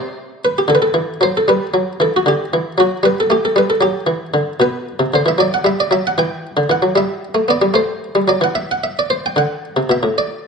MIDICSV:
0, 0, Header, 1, 2, 480
1, 0, Start_track
1, 0, Key_signature, 1, "major"
1, 0, Tempo, 523104
1, 1346, Time_signature, 12, 3, 24, 8
1, 6624, Tempo, 536673
1, 9535, End_track
2, 0, Start_track
2, 0, Title_t, "Harpsichord"
2, 0, Program_c, 0, 6
2, 0, Note_on_c, 0, 48, 64
2, 0, Note_on_c, 0, 72, 101
2, 393, Note_off_c, 0, 72, 0
2, 409, Note_on_c, 0, 71, 92
2, 428, Note_off_c, 0, 48, 0
2, 517, Note_off_c, 0, 71, 0
2, 535, Note_on_c, 0, 67, 82
2, 624, Note_on_c, 0, 50, 69
2, 639, Note_off_c, 0, 67, 0
2, 641, Note_on_c, 0, 69, 94
2, 687, Note_on_c, 0, 71, 74
2, 694, Note_off_c, 0, 69, 0
2, 747, Note_off_c, 0, 71, 0
2, 753, Note_on_c, 0, 69, 98
2, 797, Note_off_c, 0, 50, 0
2, 864, Note_on_c, 0, 52, 67
2, 1038, Note_off_c, 0, 52, 0
2, 1109, Note_off_c, 0, 69, 0
2, 1110, Note_on_c, 0, 54, 68
2, 1128, Note_on_c, 0, 72, 97
2, 1237, Note_off_c, 0, 72, 0
2, 1259, Note_on_c, 0, 69, 85
2, 1281, Note_off_c, 0, 54, 0
2, 1359, Note_on_c, 0, 55, 75
2, 1362, Note_off_c, 0, 69, 0
2, 1368, Note_on_c, 0, 71, 118
2, 1525, Note_off_c, 0, 55, 0
2, 1593, Note_on_c, 0, 54, 67
2, 1761, Note_off_c, 0, 54, 0
2, 1832, Note_off_c, 0, 71, 0
2, 1834, Note_on_c, 0, 52, 63
2, 1847, Note_on_c, 0, 69, 85
2, 1954, Note_off_c, 0, 69, 0
2, 1983, Note_on_c, 0, 66, 84
2, 2002, Note_off_c, 0, 52, 0
2, 2072, Note_on_c, 0, 50, 69
2, 2082, Note_off_c, 0, 66, 0
2, 2092, Note_on_c, 0, 67, 100
2, 2243, Note_off_c, 0, 50, 0
2, 2324, Note_on_c, 0, 52, 70
2, 2492, Note_off_c, 0, 52, 0
2, 2548, Note_on_c, 0, 54, 69
2, 2563, Note_off_c, 0, 67, 0
2, 2568, Note_on_c, 0, 66, 100
2, 2721, Note_off_c, 0, 54, 0
2, 2781, Note_on_c, 0, 55, 67
2, 2798, Note_off_c, 0, 66, 0
2, 2800, Note_on_c, 0, 71, 98
2, 2912, Note_off_c, 0, 71, 0
2, 2936, Note_on_c, 0, 69, 88
2, 2954, Note_off_c, 0, 55, 0
2, 3027, Note_on_c, 0, 57, 69
2, 3040, Note_off_c, 0, 69, 0
2, 3040, Note_on_c, 0, 67, 89
2, 3151, Note_off_c, 0, 67, 0
2, 3165, Note_on_c, 0, 69, 84
2, 3197, Note_off_c, 0, 57, 0
2, 3265, Note_on_c, 0, 55, 69
2, 3273, Note_off_c, 0, 69, 0
2, 3286, Note_on_c, 0, 71, 89
2, 3393, Note_off_c, 0, 71, 0
2, 3393, Note_on_c, 0, 69, 83
2, 3436, Note_off_c, 0, 55, 0
2, 3493, Note_on_c, 0, 54, 66
2, 3506, Note_off_c, 0, 69, 0
2, 3507, Note_on_c, 0, 67, 102
2, 3668, Note_off_c, 0, 54, 0
2, 3731, Note_on_c, 0, 52, 64
2, 3908, Note_off_c, 0, 52, 0
2, 3981, Note_on_c, 0, 50, 67
2, 4016, Note_off_c, 0, 67, 0
2, 4154, Note_off_c, 0, 50, 0
2, 4221, Note_on_c, 0, 47, 79
2, 4237, Note_on_c, 0, 71, 107
2, 4480, Note_off_c, 0, 47, 0
2, 4585, Note_on_c, 0, 48, 72
2, 4636, Note_off_c, 0, 71, 0
2, 4696, Note_off_c, 0, 48, 0
2, 4714, Note_on_c, 0, 50, 64
2, 4729, Note_on_c, 0, 72, 86
2, 4820, Note_off_c, 0, 50, 0
2, 4826, Note_on_c, 0, 52, 64
2, 4833, Note_off_c, 0, 72, 0
2, 4848, Note_on_c, 0, 76, 95
2, 4936, Note_off_c, 0, 52, 0
2, 4939, Note_on_c, 0, 54, 69
2, 4953, Note_off_c, 0, 76, 0
2, 4957, Note_on_c, 0, 74, 105
2, 5068, Note_off_c, 0, 74, 0
2, 5083, Note_on_c, 0, 78, 93
2, 5112, Note_off_c, 0, 54, 0
2, 5179, Note_on_c, 0, 55, 68
2, 5192, Note_off_c, 0, 78, 0
2, 5196, Note_on_c, 0, 76, 104
2, 5310, Note_off_c, 0, 76, 0
2, 5324, Note_on_c, 0, 74, 85
2, 5355, Note_off_c, 0, 55, 0
2, 5423, Note_on_c, 0, 54, 70
2, 5435, Note_off_c, 0, 74, 0
2, 5437, Note_on_c, 0, 76, 100
2, 5552, Note_off_c, 0, 76, 0
2, 5571, Note_on_c, 0, 78, 90
2, 5599, Note_off_c, 0, 54, 0
2, 5672, Note_on_c, 0, 52, 70
2, 5680, Note_off_c, 0, 78, 0
2, 5681, Note_on_c, 0, 79, 102
2, 5930, Note_off_c, 0, 52, 0
2, 6028, Note_on_c, 0, 50, 58
2, 6082, Note_off_c, 0, 79, 0
2, 6140, Note_off_c, 0, 50, 0
2, 6144, Note_on_c, 0, 52, 57
2, 6160, Note_on_c, 0, 78, 94
2, 6258, Note_off_c, 0, 52, 0
2, 6262, Note_on_c, 0, 54, 59
2, 6376, Note_off_c, 0, 54, 0
2, 6382, Note_on_c, 0, 55, 66
2, 6390, Note_off_c, 0, 78, 0
2, 6400, Note_on_c, 0, 76, 98
2, 6641, Note_off_c, 0, 55, 0
2, 6737, Note_on_c, 0, 57, 58
2, 6850, Note_off_c, 0, 57, 0
2, 6860, Note_on_c, 0, 59, 67
2, 6866, Note_off_c, 0, 76, 0
2, 6878, Note_on_c, 0, 74, 96
2, 6972, Note_off_c, 0, 59, 0
2, 6978, Note_on_c, 0, 55, 60
2, 7088, Note_on_c, 0, 57, 78
2, 7091, Note_off_c, 0, 55, 0
2, 7101, Note_on_c, 0, 72, 106
2, 7106, Note_off_c, 0, 74, 0
2, 7353, Note_off_c, 0, 57, 0
2, 7458, Note_on_c, 0, 55, 61
2, 7509, Note_off_c, 0, 72, 0
2, 7570, Note_on_c, 0, 54, 58
2, 7573, Note_off_c, 0, 55, 0
2, 7582, Note_on_c, 0, 74, 87
2, 7688, Note_off_c, 0, 54, 0
2, 7692, Note_on_c, 0, 52, 59
2, 7700, Note_off_c, 0, 74, 0
2, 7714, Note_on_c, 0, 78, 96
2, 7818, Note_on_c, 0, 76, 106
2, 7826, Note_off_c, 0, 78, 0
2, 7938, Note_off_c, 0, 76, 0
2, 7962, Note_on_c, 0, 78, 87
2, 8070, Note_off_c, 0, 78, 0
2, 8071, Note_on_c, 0, 76, 85
2, 8185, Note_off_c, 0, 76, 0
2, 8208, Note_on_c, 0, 74, 78
2, 8299, Note_off_c, 0, 52, 0
2, 8308, Note_on_c, 0, 72, 91
2, 8314, Note_off_c, 0, 74, 0
2, 8424, Note_off_c, 0, 72, 0
2, 8449, Note_on_c, 0, 79, 88
2, 8541, Note_on_c, 0, 50, 63
2, 8553, Note_off_c, 0, 79, 0
2, 8557, Note_on_c, 0, 78, 89
2, 8794, Note_off_c, 0, 50, 0
2, 8902, Note_on_c, 0, 48, 60
2, 8950, Note_off_c, 0, 78, 0
2, 9010, Note_off_c, 0, 48, 0
2, 9018, Note_on_c, 0, 47, 55
2, 9034, Note_on_c, 0, 76, 85
2, 9129, Note_off_c, 0, 47, 0
2, 9137, Note_on_c, 0, 45, 52
2, 9265, Note_off_c, 0, 76, 0
2, 9272, Note_on_c, 0, 74, 85
2, 9535, Note_off_c, 0, 45, 0
2, 9535, Note_off_c, 0, 74, 0
2, 9535, End_track
0, 0, End_of_file